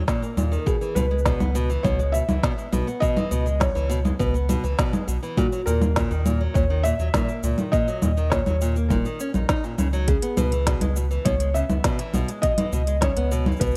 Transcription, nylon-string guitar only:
0.08 A#2
0.22 A#3
0.37 A#2
0.52 D#3
0.66 B2
0.81 E3
0.96 B2
1.11 G#3
1.26 B2
1.40 B3
1.55 B2
1.70 E3
1.84 B2
1.99 G#3
2.14 B2
2.29 E3
2.43 B2
2.58 G#3
2.72 B2
2.87 B3
3.02 B2
3.16 E3
3.31 B2
3.46 G#3
3.60 B2
3.75 E3
3.90 B2
4.05 G#3
4.19 B2
4.34 B3
4.49 B2
4.64 E3
4.78 B2
4.93 G#3
5.08 B2
5.23 E3
5.37 A#2
5.52 F#3
5.67 A#2
5.82 A#3
5.96 A#2
6.11 D#3
6.26 A#2
6.41 F#3
6.55 A#2
6.70 D#3
6.85 A#2
7.00 F#3
7.14 A#2
7.29 A#3
7.44 A#2
7.58 D#3
7.73 A#2
7.88 F#3
8.02 A#2
8.17 D#3
8.32 A#2
8.47 F#3
8.62 A#2
8.76 A#3
8.91 A#2
9.05 D#3
9.20 C#4
9.35 D#4
9.49 D#4
9.64 A#2
9.79 C#3
9.93 F#3
10.08 C#3
10.22 B3
10.37 B2
10.52 E3
10.67 B2
10.81 G#3
10.96 B2
11.11 E3
11.25 B2
11.40 G#3
11.55 C#3
11.70 B3
11.84 B2
11.99 E3
12.14 B2
12.29 G#3
12.43 B2
12.58 E3
12.73 B2
12.88 G#3
13.02 C#3
13.17 B3
13.31 B2
13.47 E3
13.61 B2

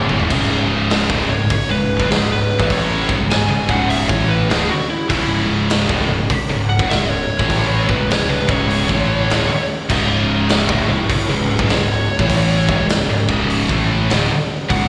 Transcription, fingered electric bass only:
0.10 E1
0.31 C#1
1.10 D1
1.30 C#1
1.50 muted fingered electric bass stroke
1.70 C#1
2.00 F#1
2.11 C#1
2.60 A1
3.09 G#1
3.20 C#1
3.51 C#1
3.69 C#1
4.10 A1
4.50 D1
5.10 C#1
5.89 D1
6.09 C#1
6.30 muted fingered electric bass stroke
6.50 C#1
6.80 F#1
6.90 C#1
7.40 A1
7.89 G#1
7.99 C#1
8.29 C#1
8.49 C#1
8.89 A1
9.30 D1
9.90 C#1
10.69 D1
10.89 C#1
11.10 muted fingered electric bass stroke
11.29 C#1
11.59 F#1
11.69 C#1
12.19 A1
12.69 G#1
12.80 C#1
13.10 C#1
13.29 C#1
13.69 A1
14.10 D1
14.70 C#1

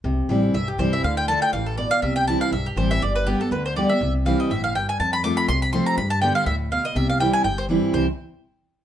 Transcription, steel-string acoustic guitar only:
0.04 C3
0.29 E3 G3 C4 E4
0.55 G2
0.78 E3 G3 C4 E4
1.04 D3
1.28 D3 A3 D4 F4
1.54 E3
1.78 B2
2.03 C3
2.27 E3 G3 C4 E4
2.52 G2
2.76 E3 G3 C4 E4
3.02 G2
3.26 D3 G3 B3 G4
3.39 B3 G4
3.51 D3
3.76 D3 G3 B3 G4
3.89 B3 G4
4.01 C3
4.26 E3 G3 C4 E4
4.51 A2
4.75 G2
5.00 F2
5.24 F3 A3 C4 F4
5.49 C3
5.73 F3 A3 C4 F4
5.98 G2
6.22 D3 G3 B3 G4
6.47 A2
6.72 B2
6.96 C3
7.20 E3 G3 C4 E4
7.45 G2
7.69 E3 G3 C4 E4
7.93 C3 E3 G3 C4 E4

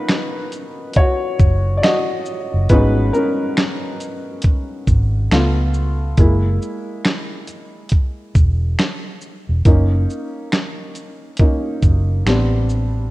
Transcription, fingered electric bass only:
1.40 F#1
2.54 F#1
2.70 G#1
4.88 G#1
5.31 C#2
6.18 F#1
8.36 E1
9.49 E1
9.66 F#1
11.83 F#1
12.26 A1

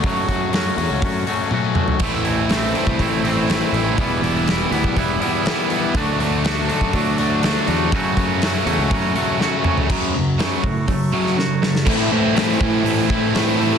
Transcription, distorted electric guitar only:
2.00 A2 E3 A3 C4 E4
2.25 A3 C4 E4
2.75 A3 C4 E4
2.99 A2 E3 A3 C4 E4
3.24 A3 C4 E4
3.49 E3 A3 C4 E4
3.73 A3 C4 E4
3.97 E3 G3 B3 E4
4.21 G3 B3 E4
4.71 G3 B3 E4
4.96 E3 G3 B3 E4
5.21 G3 B3 E4
5.45 E3 G3 B3 E4
5.70 G3 B3 E4
5.95 D3 F#3 A3 D4
6.20 F#3 A3 D4
6.69 F#3 A3 D4
6.93 D3 F#3 A3 D4
7.18 F#3 A3 D4
7.42 D3 F#3 A3 D4
7.67 F#3 A3 D4
7.92 F#2 C#3 F#3 A3 C#4
8.17 F#3 A3 C#4
8.66 F#3 A3 C#4
8.91 F#2 C#3 F#3 A3 C#4
9.16 F#3 A3 C#4
9.40 C#3 F#3 A3 C#4
9.65 F#3 A3 C#4
9.90 F#2 C#3 F#3
10.14 F#2 C#3
10.38 F#2 C#3 F#3
10.62 F#2 C#3
10.88 F#2 C#3
11.12 F#2 C#3 F#3
11.37 F#2 C#3
11.62 F#2 C#3
11.86 A2 E3 A3 C4 E4
12.11 A3 C4 E4
12.35 A2 E3 A3 C4 E4
12.60 A3 C4 E4
13.10 A3 C4 E4
13.34 E3 A3 C4 E4

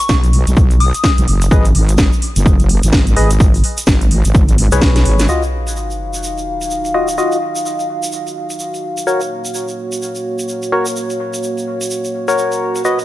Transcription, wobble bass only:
0.09 B1
0.47 B1
0.57 B1
1.18 B1
1.28 F#1
1.51 G#1
1.75 G#1
2.36 F#1
2.83 G#1
3.16 G#1
3.87 G#1
4.25 G#1
4.35 G#1
4.72 B1
5.05 G#1

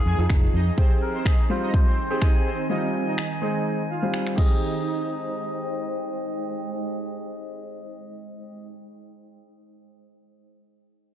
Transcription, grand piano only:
0.18 F3 D#4 G#4
0.78 C4 G4 G#4
1.49 G3 C4 F4
2.10 C4 G4 G#4
2.69 G3 C4 F4
3.42 G#3 C4 G#4
4.02 G3 C4 F4
4.36 C4 G4 G#4

